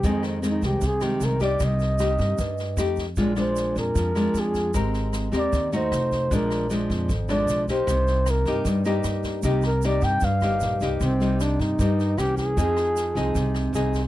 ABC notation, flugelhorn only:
X:1
M:4/4
L:1/16
Q:1/4=153
K:Cm
V:1 name="Flugelhorn"
A2 C2 E2 G2 A2 G2 B2 d2 | e12 z4 | z2 c4 B6 A4 | z6 d4 c6 |
B4 z6 d4 c2- | c4 B4 z8 | G2 B2 d2 g2 f6- f z | C4 D2 E6 G2 A2- |
A8- A2 z6 |]